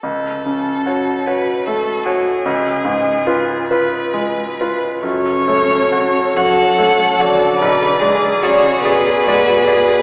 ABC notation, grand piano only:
X:1
M:6/8
L:1/8
Q:3/8=49
K:F#m
V:1 name="Grand piano"
C,, C, [Fc] [Fc] A, [Fc] | C,, G,, [^EB] [EB] G, [EB] | F,, [A,c] [Fc] [Fc] [A,c] [Fc] | B,,, [G,d] [Gd] [Gd] [G,d] [Gd] |]